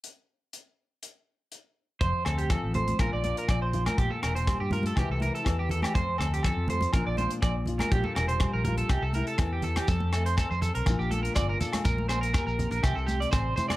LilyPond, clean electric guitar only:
\new Staff \with { instrumentName = "Clean electric guitar" } { \time 4/4 \key f \major \tempo 4 = 122 r1 | c''8 a'16 g'16 a'8 c''8 bes'16 d''16 d''16 bes'16 d''16 c''8 bes'16 | g'16 a'16 bes'16 c''8 g'16 bes'16 a'16 g'16 a'16 bes'16 a'8 g'16 a'16 g'16 | c''8 a'16 g'16 a'8 c''8 bes'16 d''16 c''16 r16 d''16 r8 bes'16 |
g'16 a'16 bes'16 c''8 bes'16 bes'16 a'16 g'16 a'16 bes'16 a'8 g'16 a'16 g'16 | a'8 a'16 c''16 a'16 c''16 a'16 bes'8 g'16 a'16 bes'16 d''16 bes'16 a'8 | bes'8 c''16 bes'16 bes'16 bes'8 bes'16 g'16 a'16 g'16 d''16 c''8 c''16 d''16 | }